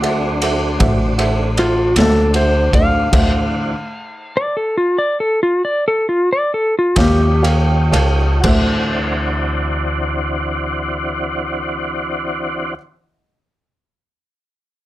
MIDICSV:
0, 0, Header, 1, 6, 480
1, 0, Start_track
1, 0, Tempo, 770218
1, 1459, Tempo, 792602
1, 1932, Time_signature, 12, 3, 24, 8
1, 2419, Tempo, 840336
1, 3379, Tempo, 894188
1, 3859, Tempo, 940439
1, 4339, Tempo, 998336
1, 4819, Tempo, 1030928
1, 7807, End_track
2, 0, Start_track
2, 0, Title_t, "Upright piano"
2, 0, Program_c, 0, 0
2, 12, Note_on_c, 0, 66, 72
2, 13, Note_on_c, 0, 69, 66
2, 18, Note_on_c, 0, 72, 65
2, 20, Note_on_c, 0, 76, 77
2, 195, Note_off_c, 0, 66, 0
2, 195, Note_off_c, 0, 69, 0
2, 198, Note_off_c, 0, 72, 0
2, 199, Note_off_c, 0, 76, 0
2, 258, Note_on_c, 0, 66, 69
2, 260, Note_on_c, 0, 69, 61
2, 265, Note_on_c, 0, 72, 61
2, 270, Note_on_c, 0, 76, 72
2, 437, Note_off_c, 0, 66, 0
2, 439, Note_off_c, 0, 69, 0
2, 441, Note_off_c, 0, 72, 0
2, 444, Note_off_c, 0, 76, 0
2, 493, Note_on_c, 0, 66, 67
2, 500, Note_on_c, 0, 69, 60
2, 505, Note_on_c, 0, 72, 63
2, 507, Note_on_c, 0, 76, 76
2, 675, Note_off_c, 0, 66, 0
2, 679, Note_off_c, 0, 69, 0
2, 681, Note_off_c, 0, 72, 0
2, 682, Note_off_c, 0, 76, 0
2, 735, Note_on_c, 0, 66, 73
2, 737, Note_on_c, 0, 69, 70
2, 742, Note_on_c, 0, 72, 68
2, 744, Note_on_c, 0, 76, 82
2, 916, Note_off_c, 0, 66, 0
2, 917, Note_off_c, 0, 69, 0
2, 919, Note_off_c, 0, 72, 0
2, 920, Note_off_c, 0, 76, 0
2, 981, Note_on_c, 0, 66, 62
2, 983, Note_on_c, 0, 69, 59
2, 984, Note_on_c, 0, 72, 56
2, 986, Note_on_c, 0, 76, 66
2, 1159, Note_off_c, 0, 66, 0
2, 1160, Note_off_c, 0, 69, 0
2, 1160, Note_off_c, 0, 72, 0
2, 1162, Note_off_c, 0, 76, 0
2, 1225, Note_on_c, 0, 69, 57
2, 1226, Note_on_c, 0, 66, 60
2, 1228, Note_on_c, 0, 72, 53
2, 1233, Note_on_c, 0, 76, 64
2, 1402, Note_off_c, 0, 66, 0
2, 1402, Note_off_c, 0, 69, 0
2, 1403, Note_off_c, 0, 72, 0
2, 1405, Note_off_c, 0, 76, 0
2, 1458, Note_on_c, 0, 66, 62
2, 1464, Note_on_c, 0, 69, 52
2, 1467, Note_on_c, 0, 72, 52
2, 1469, Note_on_c, 0, 76, 66
2, 1635, Note_off_c, 0, 66, 0
2, 1638, Note_off_c, 0, 69, 0
2, 1639, Note_off_c, 0, 72, 0
2, 1640, Note_off_c, 0, 76, 0
2, 1690, Note_on_c, 0, 66, 57
2, 1699, Note_on_c, 0, 69, 53
2, 1700, Note_on_c, 0, 72, 54
2, 1703, Note_on_c, 0, 74, 69
2, 1870, Note_off_c, 0, 66, 0
2, 1875, Note_off_c, 0, 69, 0
2, 1875, Note_off_c, 0, 72, 0
2, 1877, Note_off_c, 0, 74, 0
2, 1930, Note_on_c, 0, 66, 72
2, 1933, Note_on_c, 0, 69, 63
2, 1938, Note_on_c, 0, 76, 78
2, 1941, Note_on_c, 0, 72, 65
2, 2111, Note_off_c, 0, 66, 0
2, 2113, Note_off_c, 0, 69, 0
2, 2116, Note_off_c, 0, 76, 0
2, 2117, Note_off_c, 0, 72, 0
2, 4091, Note_on_c, 0, 67, 63
2, 4097, Note_on_c, 0, 70, 56
2, 4097, Note_on_c, 0, 73, 58
2, 4100, Note_on_c, 0, 77, 68
2, 4275, Note_off_c, 0, 67, 0
2, 4277, Note_off_c, 0, 73, 0
2, 4278, Note_off_c, 0, 70, 0
2, 4279, Note_off_c, 0, 77, 0
2, 4330, Note_on_c, 0, 67, 72
2, 4333, Note_on_c, 0, 73, 63
2, 4333, Note_on_c, 0, 77, 79
2, 4334, Note_on_c, 0, 70, 66
2, 4449, Note_on_c, 0, 79, 65
2, 4511, Note_off_c, 0, 67, 0
2, 4512, Note_off_c, 0, 73, 0
2, 4513, Note_off_c, 0, 70, 0
2, 4515, Note_off_c, 0, 77, 0
2, 4563, Note_off_c, 0, 79, 0
2, 4566, Note_on_c, 0, 67, 70
2, 4567, Note_on_c, 0, 70, 64
2, 4570, Note_on_c, 0, 81, 62
2, 4573, Note_on_c, 0, 77, 77
2, 4574, Note_on_c, 0, 73, 65
2, 4753, Note_off_c, 0, 67, 0
2, 4753, Note_off_c, 0, 70, 0
2, 4756, Note_off_c, 0, 73, 0
2, 4756, Note_off_c, 0, 77, 0
2, 4799, Note_off_c, 0, 81, 0
2, 4801, Note_on_c, 0, 66, 71
2, 4814, Note_on_c, 0, 69, 65
2, 4826, Note_on_c, 0, 72, 61
2, 4837, Note_on_c, 0, 76, 75
2, 6805, Note_off_c, 0, 66, 0
2, 6817, Note_off_c, 0, 69, 0
2, 6829, Note_off_c, 0, 72, 0
2, 6840, Note_off_c, 0, 76, 0
2, 7807, End_track
3, 0, Start_track
3, 0, Title_t, "Electric slide guitar"
3, 0, Program_c, 1, 29
3, 992, Note_on_c, 1, 65, 103
3, 1217, Note_off_c, 1, 65, 0
3, 1235, Note_on_c, 1, 69, 95
3, 1460, Note_off_c, 1, 69, 0
3, 1471, Note_on_c, 1, 72, 89
3, 1694, Note_off_c, 1, 72, 0
3, 1706, Note_on_c, 1, 77, 99
3, 2672, Note_on_c, 1, 74, 108
3, 2776, Note_off_c, 1, 74, 0
3, 2785, Note_on_c, 1, 69, 83
3, 2893, Note_off_c, 1, 69, 0
3, 2904, Note_on_c, 1, 65, 85
3, 3013, Note_off_c, 1, 65, 0
3, 3023, Note_on_c, 1, 74, 84
3, 3113, Note_off_c, 1, 77, 0
3, 3134, Note_off_c, 1, 74, 0
3, 3147, Note_on_c, 1, 69, 89
3, 3259, Note_off_c, 1, 69, 0
3, 3277, Note_on_c, 1, 65, 92
3, 3385, Note_off_c, 1, 65, 0
3, 3401, Note_on_c, 1, 74, 90
3, 3504, Note_off_c, 1, 74, 0
3, 3524, Note_on_c, 1, 69, 94
3, 3626, Note_off_c, 1, 69, 0
3, 3637, Note_on_c, 1, 65, 94
3, 3744, Note_off_c, 1, 65, 0
3, 3765, Note_on_c, 1, 74, 99
3, 3868, Note_off_c, 1, 74, 0
3, 3879, Note_on_c, 1, 69, 92
3, 3983, Note_off_c, 1, 69, 0
3, 4005, Note_on_c, 1, 65, 80
3, 4106, Note_off_c, 1, 65, 0
3, 4114, Note_on_c, 1, 67, 98
3, 4341, Note_off_c, 1, 67, 0
3, 7807, End_track
4, 0, Start_track
4, 0, Title_t, "Tonewheel organ"
4, 0, Program_c, 2, 16
4, 0, Note_on_c, 2, 50, 67
4, 0, Note_on_c, 2, 54, 73
4, 0, Note_on_c, 2, 60, 72
4, 0, Note_on_c, 2, 62, 72
4, 1913, Note_off_c, 2, 50, 0
4, 1913, Note_off_c, 2, 62, 0
4, 1914, Note_off_c, 2, 54, 0
4, 1915, Note_off_c, 2, 60, 0
4, 1937, Note_on_c, 2, 66, 69
4, 1940, Note_on_c, 2, 52, 69
4, 1940, Note_on_c, 2, 60, 72
4, 1942, Note_on_c, 2, 62, 69
4, 2318, Note_off_c, 2, 66, 0
4, 2319, Note_off_c, 2, 52, 0
4, 2319, Note_off_c, 2, 60, 0
4, 2321, Note_off_c, 2, 62, 0
4, 4091, Note_on_c, 2, 53, 76
4, 4091, Note_on_c, 2, 63, 75
4, 4093, Note_on_c, 2, 67, 72
4, 4095, Note_on_c, 2, 61, 69
4, 4810, Note_off_c, 2, 53, 0
4, 4810, Note_off_c, 2, 63, 0
4, 4811, Note_off_c, 2, 61, 0
4, 4811, Note_off_c, 2, 67, 0
4, 4815, Note_on_c, 2, 62, 65
4, 4816, Note_on_c, 2, 60, 66
4, 4819, Note_on_c, 2, 66, 67
4, 4821, Note_on_c, 2, 52, 68
4, 6818, Note_off_c, 2, 62, 0
4, 6820, Note_off_c, 2, 60, 0
4, 6823, Note_off_c, 2, 66, 0
4, 6825, Note_off_c, 2, 52, 0
4, 7807, End_track
5, 0, Start_track
5, 0, Title_t, "Upright bass"
5, 0, Program_c, 3, 32
5, 0, Note_on_c, 3, 38, 93
5, 476, Note_off_c, 3, 38, 0
5, 499, Note_on_c, 3, 33, 112
5, 1193, Note_off_c, 3, 33, 0
5, 1223, Note_on_c, 3, 38, 98
5, 1673, Note_off_c, 3, 38, 0
5, 1698, Note_on_c, 3, 38, 86
5, 1915, Note_off_c, 3, 38, 0
5, 1937, Note_on_c, 3, 38, 104
5, 2297, Note_off_c, 3, 38, 0
5, 4096, Note_on_c, 3, 39, 98
5, 4556, Note_off_c, 3, 39, 0
5, 4571, Note_on_c, 3, 37, 87
5, 4797, Note_off_c, 3, 37, 0
5, 4822, Note_on_c, 3, 38, 98
5, 6825, Note_off_c, 3, 38, 0
5, 7807, End_track
6, 0, Start_track
6, 0, Title_t, "Drums"
6, 22, Note_on_c, 9, 51, 62
6, 84, Note_off_c, 9, 51, 0
6, 259, Note_on_c, 9, 51, 69
6, 321, Note_off_c, 9, 51, 0
6, 499, Note_on_c, 9, 51, 87
6, 501, Note_on_c, 9, 36, 119
6, 561, Note_off_c, 9, 51, 0
6, 564, Note_off_c, 9, 36, 0
6, 739, Note_on_c, 9, 51, 67
6, 802, Note_off_c, 9, 51, 0
6, 981, Note_on_c, 9, 51, 61
6, 1043, Note_off_c, 9, 51, 0
6, 1221, Note_on_c, 9, 51, 88
6, 1238, Note_on_c, 9, 38, 117
6, 1284, Note_off_c, 9, 51, 0
6, 1300, Note_off_c, 9, 38, 0
6, 1457, Note_on_c, 9, 51, 63
6, 1518, Note_off_c, 9, 51, 0
6, 1697, Note_on_c, 9, 36, 84
6, 1698, Note_on_c, 9, 51, 64
6, 1757, Note_off_c, 9, 36, 0
6, 1759, Note_off_c, 9, 51, 0
6, 1936, Note_on_c, 9, 36, 115
6, 1936, Note_on_c, 9, 49, 85
6, 1936, Note_on_c, 9, 51, 89
6, 1997, Note_off_c, 9, 36, 0
6, 1997, Note_off_c, 9, 49, 0
6, 1997, Note_off_c, 9, 51, 0
6, 4093, Note_on_c, 9, 51, 80
6, 4096, Note_on_c, 9, 36, 91
6, 4107, Note_on_c, 9, 38, 117
6, 4144, Note_off_c, 9, 51, 0
6, 4147, Note_off_c, 9, 36, 0
6, 4158, Note_off_c, 9, 38, 0
6, 4340, Note_on_c, 9, 51, 58
6, 4388, Note_off_c, 9, 51, 0
6, 4576, Note_on_c, 9, 51, 67
6, 4624, Note_off_c, 9, 51, 0
6, 4816, Note_on_c, 9, 49, 90
6, 4819, Note_on_c, 9, 36, 107
6, 4863, Note_off_c, 9, 49, 0
6, 4865, Note_off_c, 9, 36, 0
6, 7807, End_track
0, 0, End_of_file